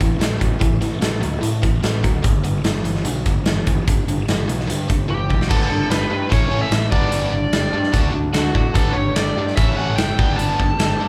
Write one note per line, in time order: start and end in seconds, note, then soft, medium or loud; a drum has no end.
0.00 0.19 A1 medium
0.00 0.19 A2 medium
0.00 0.19 E3 medium
0.00 kick medium
0.00 closed hi-hat medium
0.20 0.39 A1 medium
0.20 0.38 A2 medium
0.20 0.39 F#3 medium
0.20 snare loud
0.20 closed hi-hat medium
0.40 0.60 A1 medium
0.40 0.59 A2 medium
0.40 0.59 F#3 medium
0.40 kick medium
0.40 closed hi-hat medium
0.60 0.80 A1 medium
0.60 0.79 A2 medium
0.60 0.79 E3 medium
0.60 kick loud
0.60 closed hi-hat medium
0.81 1.01 A1 medium
0.81 1.00 A2 medium
0.81 1.00 E3 medium
0.81 snare soft
0.81 closed hi-hat medium
1.01 1.21 A1 medium
1.01 1.20 A2 medium
1.01 1.20 F#3 medium
1.01 snare loud
1.01 closed hi-hat medium
1.21 1.41 D2 medium
1.21 1.40 A2 medium
1.21 1.40 F#3 medium
1.21 closed hi-hat medium
1.41 1.60 A2 medium
1.41 1.61 A2 medium
1.41 1.61 E3 medium
1.41 closed hi-hat medium
1.62 1.82 A1 medium
1.62 1.81 A2 medium
1.62 1.81 E3 medium
1.62 kick medium
1.62 closed hi-hat medium
1.83 2.02 A1 medium
1.83 2.02 A2 medium
1.83 2.02 F#3 medium
1.83 snare medium
1.83 closed hi-hat medium
2.03 2.23 D2 medium
2.03 2.22 A2 medium
2.03 2.22 F#3 medium
2.03 kick medium
2.03 closed hi-hat medium
2.23 2.43 G1 medium
2.23 2.42 G2 medium
2.23 2.42 D3 medium
2.23 kick loud
2.23 closed hi-hat medium
2.44 2.63 G1 medium
2.44 2.63 G2 medium
2.44 2.63 D3 medium
2.44 closed hi-hat medium
2.64 2.83 G1 medium
2.64 2.83 G2 medium
2.64 2.83 E3 medium
2.64 snare medium
2.64 closed hi-hat medium
2.84 3.04 G1 medium
2.84 3.03 G2 medium
2.84 3.03 E3 medium
2.84 closed hi-hat medium
2.95 snare soft
3.05 3.24 B1 medium
3.05 3.23 G2 medium
3.05 3.24 D3 medium
3.05 closed hi-hat medium
3.26 3.45 G1 medium
3.26 3.45 G2 medium
3.26 3.45 D3 medium
3.26 kick medium
3.26 closed hi-hat medium
3.46 3.65 G1 medium
3.46 3.65 G2 medium
3.46 3.65 E3 medium
3.46 snare loud
3.46 closed hi-hat medium
3.67 3.86 G1 medium
3.67 3.85 G2 medium
3.67 3.85 E3 medium
3.67 kick medium
3.67 closed hi-hat medium
3.87 4.06 G1 medium
3.87 4.06 G2 medium
3.87 4.06 D3 medium
3.87 kick loud
3.87 closed hi-hat medium
4.07 4.26 G1 medium
4.07 4.26 G2 medium
4.07 4.26 D3 medium
4.07 closed hi-hat medium
4.28 4.47 G1 medium
4.28 4.46 G2 medium
4.28 4.47 E3 medium
4.28 snare medium
4.28 closed hi-hat medium
4.48 4.67 B1 medium
4.48 4.66 G2 medium
4.48 4.67 E3 medium
4.48 closed hi-hat medium
4.60 snare soft
4.67 4.86 G2 medium
4.67 4.88 G2 medium
4.67 4.87 D3 medium
4.67 closed hi-hat medium
4.89 5.08 G1 medium
4.89 5.07 G2 medium
4.89 5.07 D3 medium
4.89 kick medium
4.89 closed hi-hat medium
5.08 5.28 G1 medium
5.08 5.27 G2 medium
5.08 5.27 E3 medium
5.08 5.48 G4 medium
5.08 high tom medium
5.29 5.49 B1 medium
5.29 5.48 G2 medium
5.29 5.48 E3 medium
5.29 kick medium
5.41 snare medium
5.49 5.65 G1 medium
5.49 5.68 G3 medium
5.49 5.69 B3 medium
5.49 5.69 D4 medium
5.49 5.88 A4 medium
5.49 kick loud
5.49 crash loud
5.70 5.84 G1 medium
5.70 5.88 G3 medium
5.70 5.88 D4 medium
5.89 6.04 G1 medium
5.89 6.09 G3 medium
5.89 6.09 D4 medium
5.89 6.33 B4 medium
5.89 snare loud
5.89 closed hi-hat medium
6.10 6.25 G2 medium
6.10 6.29 G3 medium
6.10 6.29 D4 medium
6.29 6.46 A1 medium
6.29 6.49 A2 medium
6.29 6.50 A3 medium
6.29 6.50 C#4 medium
6.29 6.61 C#5 medium
6.29 kick loud
6.29 closed hi-hat medium
6.50 6.65 A1 medium
6.50 6.70 A2 medium
6.50 6.70 A3 medium
6.50 6.71 C#4 medium
6.62 6.90 E5 medium
6.71 6.86 A1 medium
6.71 6.90 A2 medium
6.71 6.90 A3 medium
6.71 snare loud
6.71 closed hi-hat medium
6.91 7.07 G1 medium
6.91 7.10 G3 medium
6.91 7.11 B3 medium
6.91 7.11 D4 medium
6.91 8.10 D5 medium
6.91 kick medium
7.11 7.27 G1 medium
7.11 7.31 G3 medium
7.11 7.32 B3 medium
7.11 7.32 D4 medium
7.11 closed hi-hat medium
7.32 7.47 G1 medium
7.32 7.51 G3 medium
7.32 7.51 D4 medium
7.52 7.67 G1 medium
7.52 7.72 G3 medium
7.52 7.72 D4 medium
7.52 snare loud
7.52 closed hi-hat medium
7.73 7.88 G2 medium
7.73 7.92 G3 medium
7.73 7.92 D4 medium
7.83 snare soft
7.92 8.08 D2 medium
7.92 8.11 D3 medium
7.92 8.12 D4 medium
7.92 8.13 F#4 medium
7.92 kick loud
7.92 closed hi-hat medium
8.13 8.29 D2 medium
8.13 8.32 D3 medium
8.13 8.32 D4 medium
8.33 8.49 D2 medium
8.33 8.53 D3 medium
8.33 8.53 D4 medium
8.33 8.76 F#4 medium
8.33 snare medium
8.33 closed hi-hat medium
8.55 8.69 A2 medium
8.55 8.74 D3 medium
8.55 8.74 D4 medium
8.55 kick medium
8.74 8.90 G1 medium
8.74 8.94 G3 medium
8.74 8.95 B3 loud
8.74 9.57 B3 medium
8.74 8.95 D4 medium
8.74 9.57 G4 medium
8.74 8.96 A4 medium
8.74 9.55 A4 medium
8.74 kick loud
8.74 closed hi-hat medium
8.93 9.10 G1 medium
8.93 9.14 G3 medium
8.93 9.14 D4 medium
8.93 9.13 C#5 medium
9.16 9.30 G1 medium
9.16 9.35 G3 medium
9.16 9.35 D4 medium
9.16 9.55 D5 medium
9.16 snare loud
9.16 closed hi-hat medium
9.36 9.51 G2 medium
9.36 9.56 G3 medium
9.36 9.56 D4 medium
9.47 snare soft
9.56 9.72 A1 medium
9.56 9.76 A2 medium
9.56 9.76 A3 medium
9.56 10.17 C#4 medium
9.56 9.77 C#4 medium
9.56 10.17 E4 medium
9.56 10.17 A4 medium
9.56 9.75 E5 medium
9.56 kick loud
9.56 closed hi-hat medium
9.76 9.92 A1 medium
9.76 9.97 A2 medium
9.76 9.97 A3 medium
9.76 9.97 C#4 loud
9.76 9.96 F#5 medium
9.96 10.12 F#1 medium
9.96 10.16 A2 medium
9.96 10.17 A3 medium
9.96 10.37 G5 loud
9.96 snare loud
9.96 closed hi-hat medium
10.18 10.33 G1 medium
10.18 10.38 G3 medium
10.18 11.08 B3 medium
10.18 10.39 B3 medium
10.18 10.38 D4 medium
10.18 11.08 G4 medium
10.18 11.08 A4 medium
10.18 kick loud
10.37 10.54 G1 medium
10.37 10.58 G3 medium
10.37 10.59 B3 medium
10.37 10.58 D4 medium
10.37 11.08 A5 loud
10.37 closed hi-hat medium
10.59 10.74 G1 medium
10.59 10.77 G3 medium
10.59 10.78 D4 medium
10.59 kick medium
10.79 10.94 G1 medium
10.79 10.98 G3 medium
10.79 10.98 D4 medium
10.79 snare loud
10.79 closed hi-hat medium
11.00 11.08 G2 medium
11.00 11.08 G3 medium
11.00 11.08 D4 medium